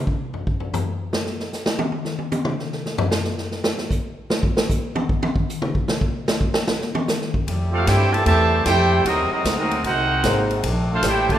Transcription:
0.07 kick
0.34 floor tom
0.47 kick
0.60 floor tom
0.74 floor tom, hi-hat pedal
1.13 snare
1.26 snare
1.40 snare
1.53 snare, hi-hat pedal
1.66 snare
1.79 high tom
1.92 high tom
2.05 snare
2.19 high tom
2.32 hi-hat pedal, high tom
2.45 mid tom
2.59 snare
2.72 snare
2.86 snare
2.98 floor tom
3.11 snare, hi-hat pedal
3.24 snare
3.38 snare
3.51 snare
3.64 snare
3.78 snare
3.91 kick, hi-hat pedal
4.30 snare
4.43 kick
4.57 snare
4.70 kick, hi-hat pedal
4.95 high tom
5.09 kick
5.23 high tom
5.36 kick
5.49 hi-hat pedal
5.62 mid tom
5.75 kick
5.88 snare
6.01 kick
6.28 snare, hi-hat pedal
6.41 kick
6.54 snare
6.68 snare
6.81 snare
6.95 high tom
7.08 snare, hi-hat pedal
7.22 snare
7.34 kick
7.46 F2 G3 A3 E4 G4, kick, ride
7.72 A3 C4 F4 G4 A4 F5
7.86 G2 C4 E4 G4 A4 C5 G5, kick, snare, hi-hat pedal, ride
8.12 C3 E3 A3 G4 C5 E5 A5, ride
8.25 E2 C3 E3 A3 G4 C5 E5 A5, kick, ride
8.65 F2 C4 E4 G4 A4 C5 G5, kick, snare, hi-hat pedal, ride
9.04 D#2 C3 F#3 G#3 C4 D#4 F#4 A#4 D#5, kick, ride
9.31 F#3 C4 D#4 F#4 A#4 D#5, muted upright bass stroke
9.45 D2, kick, snare, hi-hat pedal, ride
9.58 F#3 C4 D#4 F#4 A#4 D#5
9.71 ride
9.84 C2 C4 D#4 F#4 A#4 C5 F#5, kick, ride
10.24 G#1 A#3 D#4 G#4 C5, kick, snare, hi-hat pedal, ride
10.51 ride
10.63 A#1 A3 D4, kick, ride
10.91 A3 D4 F4 A4 C5 F5
11.03 A1 G4, kick, snare, hi-hat pedal, ride
11.07 E4 A4 C5 G5
11.29 D3 F3 A3 F4 C5 D5 A5, kick, ride

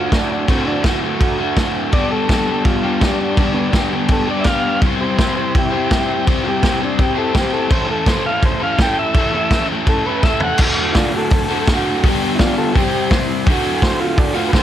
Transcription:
Already playing: D2 D3 A3 F4 F#4
0.11 A2 D3 A3 D4, kick, snare, crash
0.15 F#4
0.32 D4
0.46 D2 A2 D3 A3 C4, kick, crash
0.50 F#4
0.64 A3 D4 F#4
0.69 D3
0.83 D2 A2 D3 A3 F#4, kick, snare, crash
1.01 A3 F#4
1.06 D3
1.21 kick, crash
1.38 A3 F#4
1.42 D3
1.57 A2 D3 A3, kick, snare, crash
1.61 F#4
1.91 G2 D3 G3 B3 D4 D5, kick, crash
1.96 G4
2.09 B3 D4 G4 A4
2.14 G3
2.28 G2 D3 G3 B3 D4, kick, snare, crash
2.32 G4
2.46 B3 D4 G4
2.50 G3
2.65 F4, kick, crash
2.83 G3 B3 D4 G4
3.00 G3 B3 D4, kick, snare, crash
3.06 G4
3.22 D4
3.36 G2 D3 G3 B3 D4, kick, crash
3.40 G4
3.54 B3 D4 G4
3.58 G3 B3
3.71 G2 D3 G3 B3 D4, kick, snare, crash
3.75 G4
3.90 B3 D4 G4
3.94 G3
4.08 A4, kick, crash
4.25 B3 D4 G4
4.30 G3 D5
4.41 G3 E5, snare, crash
4.45 B3 D4 G4 F5, kick
4.81 C3 G3 C4 E4 G4, kick, crash
4.86 C5
4.99 E4 G4 C5
5.03 C4
5.16 C3 G3 C4 E4 G4 C5, kick, snare, crash
5.21 C5
5.34 E4 G4 C5
5.40 C4
5.55 E4 G4, kick, crash
5.70 E4 G4 C5
5.75 C4
5.89 C4 E4 G4, kick, snare, crash
5.93 C5
6.25 C3 G3 C4 E4 G4, kick, crash
6.30 C5
6.44 E4 F#4 G4 C5
6.48 C4 G4
6.61 C3 G3 C4 E4 G4, kick, snare, crash
6.66 C5
6.80 E4 G4 C5
6.84 C4 D4
6.99 G4, kick, crash
7.15 E4 G4 A4 C5
7.20 C4
7.34 C4 E4 G4, kick, snare, crash
7.39 C5
7.53 A4
7.68 A2 E3 A3 C#4 C5, kick, crash
7.72 E4 A4
7.87 C#4 E4 A4
7.91 A3
8.06 A2 E3 A3 C#4 E4 C5, kick, snare, crash
8.10 A4
8.25 C#4 E4 A4 F5
8.30 A3
8.43 C5, kick, crash
8.60 C#4 E4 A4 F5
8.65 A3
8.77 A3 C#4 E4 G5, kick, snare, crash
8.83 A4
8.99 E5
9.14 A2 E3 A3 C#4 E4, kick, crash
9.18 A4
9.32 C#4 E4 A4
9.37 A3
9.50 A2 E3 A3 C#4 E4, kick, snare, crash
9.55 A4
9.69 A3 C#4 E4 A4
9.87 A4, kick, crash
10.05 C#4 E4 A4 B4
10.10 A3
10.23 A3 C#4 E4 E5, kick, snare
10.28 A4
10.40 F#5, floor tom
10.57 D2 A2 D3, kick, crash
10.62 A3 F#4
10.92 E4, kick, snare, open hi-hat
10.97 D4 F4
11.16 F#4 A4
11.29 G#4, kick, open hi-hat
11.34 A4
11.49 D3 A3 F#4
11.53 D2 A2
11.67 D2 A2 D3, kick, snare, open hi-hat
11.72 A3 F#4
12.03 G2 D3 G3 B3, kick, open hi-hat
12.08 D4 G4
12.35 D4 E4, open hi-hat
12.39 F4, kick, snare
12.57 F4 A4
12.71 C3 G3 F#4, open hi-hat
12.75 C4 E4 G4 C5, kick
13.11 kick, snare, open hi-hat
13.45 D2 A2 D3 A3, kick, open hi-hat
13.51 F#4
13.82 C5, kick, snare, open hi-hat
14.01 F4
14.18 D4, kick, open hi-hat
14.34 A2 D3 A3 F4 F#4
14.39 D2
14.49 D2 A2 B4
14.53 D3 A3 F#4 C5, kick, snare, open hi-hat

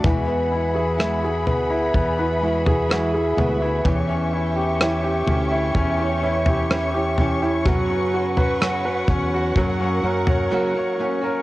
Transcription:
Already playing: F#5
0.04 E2 E3 G#3 B3 E4 F#4 G#4 E5 B5, kick, floor tom
0.28 B3
0.52 E4
0.74 B3 E4 F#4 G#4
0.98 E3 G#3 B3 E4 F#4, cross-stick
1.22 B3 E4 F#4 G#4
1.46 D2 B3, floor tom
1.70 E4
1.94 E2 B3, kick, floor tom
2.17 B3 E4 F#4 B4
2.41 G#3 B3 E4 F#4
2.65 B3 E4 F#4 G#4, floor tom
2.89 E3 G#3 B3 E4 F#4, cross-stick
3.13 B3 E4 F#4 G#4
3.37 D2 G#3 B3 E4 F#4, floor tom
3.61 B3 E4 F#4
3.85 E2 E3 C#4 E4 G4 C#5 C#6, kick, floor tom
4.09 C#4
4.33 E4
4.56 C#4 E4 G4
4.80 E3 C#4 E4 G4, cross-stick
5.03 C#4 E4 G4
5.27 D2 C#4, floor tom
5.51 E4
5.75 E2 C#4, kick, floor tom
5.98 C#4 E4 G4 C#5
6.22 E3 C#4 E4 G4
6.46 C#4 E4 G4, floor tom
6.69 E3 C#4 E4 G4, cross-stick
6.94 C#4 E4 G4
7.18 E3 C#4 E4 G4, floor tom
7.42 C#4 E4 G4
7.65 F#2 C#3 F#3 B3 C#4 F#4 B4 F#5, kick, floor tom
7.90 C#4
8.14 F#4
8.36 F#3 B3 C#4 F#4 B4, floor tom
8.60 F#2 C#3 F#3 B3 C#4 F#4, cross-stick
8.83 F#3 B3 C#4 F#4 B4
9.08 E2 C#4, kick, floor tom
9.34 F#4
9.56 F#2 C#3 F#3 A#3 C#4 F#4 A#4, kick, floor tom
9.79 F#3 A#3 C#4 F#4
10.03 F#2 F#3 A#3 C#4 F#4 A#4
10.27 C#5, floor tom
10.50 F#2 C#3 F#3 A#3 C#4 F#4 A#4
10.74 F#3 A#3 C#4 F#4 C#5
10.98 F#3 A#3 C#4 F#4
11.21 F#3 A#3 C#4 F#4 A#4

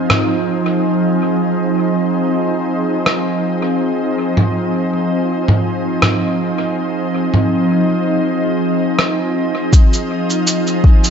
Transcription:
Already playing: F3 C4 D#4 G#4
0.10 cross-stick, mid tom
3.06 cross-stick
4.37 mid tom
5.48 mid tom
6.02 cross-stick, mid tom
7.34 mid tom
8.99 cross-stick
9.73 F3, kick, shaker
9.90 C4, shaker
10.30 G#4, shaker
10.47 shaker
10.67 shaker
10.84 kick
11.04 shaker

